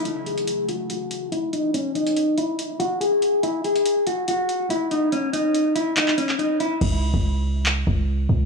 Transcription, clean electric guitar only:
X:1
M:4/4
L:1/8
Q:1/4=142
K:C#m
V:1 name="Clean electric guitar"
E G2 F F2 E D | C D2 E z F G2 | E G2 F F2 E D | C D2 E D C D E |
z8 |]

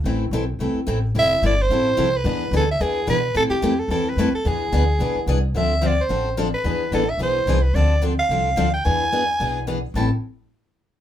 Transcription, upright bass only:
X:1
M:4/4
L:1/8
Q:"Swing" 1/4=218
K:Am
V:1 name="Upright bass" clef=bass
A,,,2 B,,,2 C,, z A,,,2 | F,,,2 G,,,2 A,,,2 C,,2 | E,,2 D,,2 E,,2 B,,2 | A,, z F,,2 E,,2 F,, z |
E,,2 D,,2 B,,, z C,,2 | D,,4 A,,,4 | E,,2 A,,,2 B,,,2 C,,2 | D,,4 C,,2 D,,2 |
E,,4 B,,,4 | A,,, z6 z |]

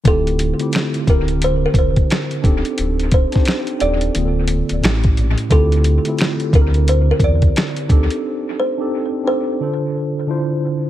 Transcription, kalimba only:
X:1
M:4/4
L:1/16
Q:"Swing 16ths" 1/4=88
K:Cmix
V:1 name="Kalimba"
A6 B2 c B c3 z3 | z2 c4 d6 z4 | A6 B2 c B d3 z3 | z2 c4 c6 z4 |]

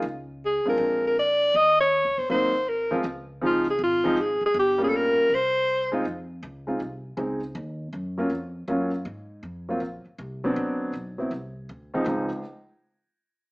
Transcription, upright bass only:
X:1
M:4/4
L:1/8
Q:"Swing" 1/4=160
K:Db
V:1 name="Upright bass" clef=bass
D,,3 _C,, B,,,4 | E,,2- (3E,, D,, =G,,, A,,,4 | D,,4 A,,,3 G,,, | =G,,,3 z C,,4 |
F,,2 D,,2 C,,2 D,,2 | E,,2 G,,2 F,,2 G,,2 | A,,2 F,,2 B,,, z C,,2 | =D,,2 =B,,,2 C,,2 D,,2 |
D,, z6 z |]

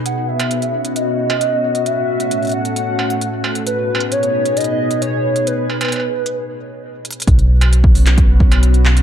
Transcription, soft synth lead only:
X:1
M:4/4
L:1/8
Q:1/4=133
K:Bmix
V:1 name="Soft synth lead"
f e3 d4 | e3 f4 z | B2 c2 d2 c2 | B6 z2 |
z8 |]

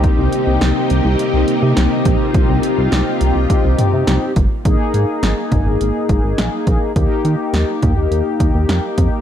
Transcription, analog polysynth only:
X:1
M:4/4
L:1/8
Q:1/4=104
K:Cm
V:1 name="Analog polysynth"
[CEG]8- | [CEG]6- [CEG] z | [B,EA]8 | [B,EG]8 |]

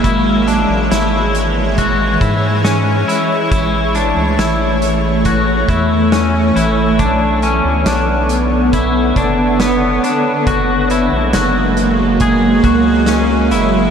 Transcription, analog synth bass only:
X:1
M:4/4
L:1/16
Q:1/4=69
K:Bdor
V:1 name="Analog synth bass" clef=bass
G,,,3 A,,, G,,,6 G,,4 z2 | A,,,3 C,, A,,,6 E,,4 A,,,2 | B,,,3 D,, B,,,6 F,,,4 z2 | F,,,3 ^A,,, F,,,6 C,,4 F,,,2 |]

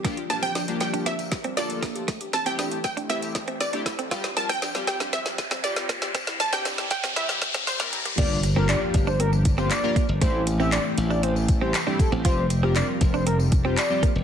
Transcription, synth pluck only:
X:1
M:4/4
L:1/16
Q:1/4=118
K:Gdor
V:1 name="Synth pluck"
z2 a g3 g2 e4 d2 z2 | z2 a g3 g2 e4 d2 z2 | z2 a g3 g2 e4 d2 z2 | z2 a g3 g2 e4 c2 z2 |
z16 | z16 | z16 |]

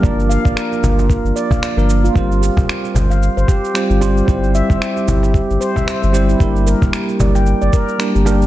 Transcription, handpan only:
X:1
M:4/4
L:1/16
Q:"Swing 16ths" 1/4=113
K:Gdor
V:1 name="Handpan"
d z f d B z F z B2 d f d B z F | F z G4 c f z c G z2 F G z | c z e c G z E z G2 c e c c z E | G z B4 d g z d B z2 G B z |]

